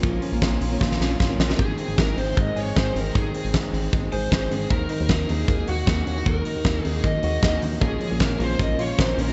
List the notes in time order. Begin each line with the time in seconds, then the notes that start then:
Already playing: A#3 C#4 F4
0.03 A#1 F3 A#3 C#4 F4 A#4, kick, closed hi-hat
0.22 C#4, open hi-hat
0.32 A#1 A#3 C#4 F4 A#4
0.42 A#1 F4, kick, snare, closed hi-hat
0.61 A#1 C#4, open hi-hat
0.70 A#3 C#4 F4 A#4
0.81 A#1 F4, kick, snare
0.92 snare
1.00 A#1 A#3 C#4 F4 A#4, snare
1.20 A#1 F4, kick, snare
1.29 A#3 C#4 F4 A#4
1.38 A#1 A#3, snare
1.50 snare
1.59 G#1 D#3 G#4, kick, closed hi-hat
1.78 C4, open hi-hat
1.88 G#1
1.98 G#1 G#3 A#4, kick, snare, closed hi-hat
2.17 G#1 C4 C5, open hi-hat
2.37 G#1 G#3 D#5, kick, closed hi-hat
2.56 G#1 G#4 C#5, open hi-hat
2.76 G#1 G#3 C5, kick, snare, closed hi-hat
2.95 G#1 C4 A#4, open hi-hat
3.14 G#1 D#3 G#4, kick, closed hi-hat
3.34 C4, open hi-hat
3.45 G#1
3.53 G#1 G#3, kick, snare, closed hi-hat
3.73 G#1 C4, open hi-hat
3.93 G#1 G#3, kick, closed hi-hat
4.12 G#1 G#4 C5, open hi-hat
4.32 G#1 G#3 C5, kick, snare
4.51 G#1 C4 G#4, open hi-hat
4.70 D#2 D#3 A#4, kick, closed hi-hat
4.89 D#4 A#4, open hi-hat
5.01 D#2
5.09 D#2 A#3, kick, snare, closed hi-hat
5.29 D#2 D#4 G#4, open hi-hat
5.48 D#2 A#3, kick, closed hi-hat
5.68 D#2 F#4, open hi-hat
5.87 D#2 A#3 F#4, kick, snare, closed hi-hat
6.07 D#2 C#4, open hi-hat
6.18 D#4
6.26 D#2 D#3 A#4, kick, closed hi-hat
6.45 D#4, open hi-hat
6.56 D#2
6.64 D#2 A#3, kick, snare, closed hi-hat
6.85 D#2 D#4 G#4, open hi-hat
7.04 D#2 A#3 D#5, kick, closed hi-hat
7.23 D#2 F#4, open hi-hat
7.42 D#2 A#3, kick, snare, closed hi-hat
7.62 D#2 D#4, open hi-hat
7.81 A#1 A#2 F3 A#3 C#4 F4 G#4 A#4, kick, closed hi-hat
8.01 C#4, open hi-hat
8.10 A#1 A#3 C#4 F4 A#4
8.20 A#1 A#3 A#4, kick, snare, closed hi-hat
8.39 A#1 A#3 C#4 F4 A#4 C5, open hi-hat
8.59 A#1 A#3 D#5, kick, closed hi-hat
8.78 A#1 F4 C#5, open hi-hat
8.98 A#1 A#3 C#4 F4 A#4 C5, kick, snare, closed hi-hat
9.17 A#1 A#3 C#4 F4 A#4, open hi-hat